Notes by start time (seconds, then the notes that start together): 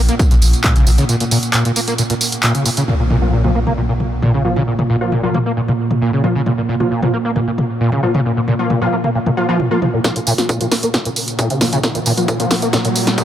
Already playing: A#2
0.09 A#3, closed hi-hat, tambourine
0.19 A#2, kick, closed hi-hat, tambourine
0.31 A#1 A#2, closed hi-hat, tambourine
0.42 A#1, open hi-hat, tambourine
0.53 closed hi-hat, tambourine
0.64 A#2, kick, clap, closed hi-hat, tambourine
0.76 A#1 C#3, closed hi-hat, tambourine
0.86 A#1 A#2, open hi-hat, tambourine
0.98 C#3, closed hi-hat, tambourine
1.09 A#2, closed hi-hat, tambourine
1.20 A#2, closed hi-hat, tambourine
1.31 A#2, open hi-hat, tambourine
1.43 closed hi-hat, tambourine
1.54 A#2, clap, closed hi-hat, tambourine
1.65 A#2, closed hi-hat, tambourine
1.76 A#3, open hi-hat, tambourine
1.88 A#3, closed hi-hat, tambourine
1.98 A#2, closed hi-hat, tambourine
2.10 A#2, closed hi-hat, tambourine
2.21 open hi-hat, tambourine
2.32 closed hi-hat, tambourine
2.43 A#2, clap, closed hi-hat, tambourine
2.55 C#3, closed hi-hat, tambourine
2.66 A#2, open hi-hat, tambourine
2.77 C#3, closed hi-hat, tambourine
2.88 A#2, mid tom, impact
2.99 A#2
3.10 A#2, mid tom
3.22 F3 A#3 F4
3.33 A#2
3.44 A#2 F3 A#3 F4, mid tom
3.55 A#3
3.67 A#3, mid tom
3.77 A#2
3.89 A#2
4.00 mid tom
4.22 A#2, mid tom
4.34 C#3
4.45 A#2 F3 A#3 F4
4.56 C#3, mid tom
4.67 A#2
4.79 A#2, mid tom
4.90 A#2
5.01 F3 A#3 F4
5.12 A#2, mid tom
5.23 A#2 F3 A#3 F4
5.34 A#3, mid tom
5.46 A#3
5.57 A#2
5.68 A#2, mid tom
5.91 mid tom
6.02 A#2
6.13 C#3
6.24 A#2 F3 A#3 F4, mid tom
6.35 C#3
6.46 A#2, mid tom
6.58 A#2
6.69 A#2
6.80 F3 A#3 F4, mid tom
6.91 A#2
7.02 A#2 F3 A#3 F4, mid tom
7.13 A#3
7.25 A#3
7.36 A#2, mid tom
7.47 A#2
7.58 mid tom
7.81 A#2
7.92 C#3, mid tom
8.03 A#2 F3 A#3 F4
8.14 C#3, mid tom
8.25 A#2
8.37 A#2
8.48 A#2, mid tom
8.59 F3 A#3 F4
8.70 A#2, mid tom
8.82 A#2 F3 A#3 F4
8.93 A#3
9.04 A#3, mid tom
9.15 A#2
9.26 A#2, mid tom
9.37 F3 A#3 F4
9.49 F3 A#3 F4
9.60 A#2, mid tom
9.71 F3 A#3 F4
9.82 F3, mid tom
9.94 A#2
10.04 A#2, kick, snare, closed hi-hat, tambourine, riser
10.16 A#2, closed hi-hat, tambourine
10.27 A#2, open hi-hat, tambourine
10.38 F3 A#3 F4, snare, closed hi-hat, tambourine
10.49 A#2, kick, closed hi-hat, tambourine
10.61 A#2 F3 A#3 F4, closed hi-hat, tambourine
10.72 A#3, snare, open hi-hat, tambourine
10.83 A#3, closed hi-hat, tambourine
10.94 A#2, kick, snare, closed hi-hat, tambourine
11.05 A#2, closed hi-hat, tambourine
11.16 open hi-hat, tambourine
11.28 closed hi-hat, tambourine
11.39 A#2, kick, closed hi-hat, tambourine
11.50 C#3, closed hi-hat, tambourine
11.61 A#2 F3 A#3 F4, snare, open hi-hat, tambourine
11.73 C#3, closed hi-hat, tambourine
11.83 A#2, kick, snare, closed hi-hat, tambourine
11.95 A#2, closed hi-hat, tambourine
12.06 A#2, open hi-hat, tambourine
12.17 F3 A#3 F4, closed hi-hat, tambourine
12.28 A#2, kick, closed hi-hat, tambourine
12.40 A#2 F3 A#3 F4, closed hi-hat, tambourine
12.51 A#3, kick, snare, open hi-hat, tambourine
12.62 A#3, closed hi-hat, tambourine
12.73 A#2, kick, snare, closed hi-hat, tambourine
12.85 A#2, closed hi-hat, tambourine
12.96 open hi-hat, tambourine
13.07 snare, closed hi-hat, tambourine
13.18 A#2, kick, closed hi-hat, tambourine